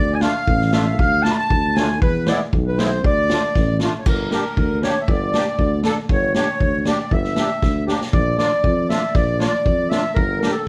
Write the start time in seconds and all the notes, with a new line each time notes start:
Already playing: D2 D5
0.12 G#5
0.21 A3 D4 F4 F5, snare
0.47 A1, kick
0.61 snare
0.72 A3 D4 F4 E5, snare
0.99 D2 F5, kick
1.23 A3 D4 F4 A5, snare
1.32 B5
1.36 A5
1.50 D2, kick
1.74 A3 D4 F4 G#5, snare
2.01 E2 B4, kick
2.26 G#3 B3 E4 D5, snare
2.53 B1, kick
2.67 B4
2.78 G#3 B3 E4 C5, snare
3.04 D2 D5, kick
3.30 A3 D4 F4, snare
3.55 A1, kick, snare
3.80 A3 D4 F4, snare
3.99 C#5
4.06 G1 A#4, kick, crash
4.31 A#3 D4 G4 A#4, snare
4.57 D2, kick
4.82 A#3 D4 G4 C#5, snare
5.01 E5
5.08 G1 D5, kick
5.34 A#3 D4 G4, snare
5.59 D2, kick
5.83 A#3 D4 A4, snare
6.09 G1 C#5, kick
6.34 A#3 D4 G4 C#5, snare
6.60 D2, kick
6.85 A#3 D4 G4 D5, snare
7.11 G1 E5, kick
7.24 snare
7.36 A#3 D4 G4, snare
7.62 D2, kick, snare
7.87 A#3 D4 G4, snare
8.01 snare
8.12 A#1 D5, kick
8.38 A#3 D4 F4 D5, snare
8.64 F2 D5, kick
8.89 A#3 D4 F4 E5, snare
9.14 A#1 D5, kick, snare
9.39 A#3 D4 F4 D5, snare
9.65 F2, kick
9.89 A#3 D4 F4 E5, snare
10.14 G1 A#4, kick
10.40 A#3 D4 G4 A#4, snare
10.52 A4